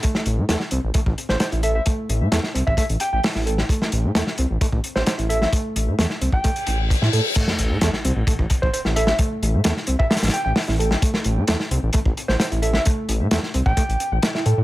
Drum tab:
CC |--------------------------------|--------------------------------|--------------------------------|--------------------------------|
HH |x---x---x---x---x---x---x-x-x---|x---x---x---x---x-x-x---o---x---|x---x---x---x---x---x---x-x-x---|x---x---x---x---x-x-x---x---x---|
SD |--o-----o-o-----------o-o-------|--------o-o-------------o-o---o-|--o-----o-o-----------o-o-----o-|--------o-o---------------o-----|
BD |o---------------o-o-------------|o-------------o-o---------------|o---------------o-o-------------|o-------------o-o-------o-------|

CC |x-------------------------------|--------------------------------|--------------------------------|--------------------------------|
HH |x---x---x---x---x---x---x---x---|x---x---x---x---xxxxx---o---x---|x---x---x---x---x---x---x-x-x---|x---x---x---x---x-x-x---x---x---|
SD |--o-----o-o---------------o---o-|--------o-o-----oooo----o-o---o-|--o-----o-o-----------o-o-----o-|--------o-o-------------o-o-----|
BD |o---------------o-o-o-o---------|o-------------o-----------------|o---------------o-o-------------|o-------------o-o---------------|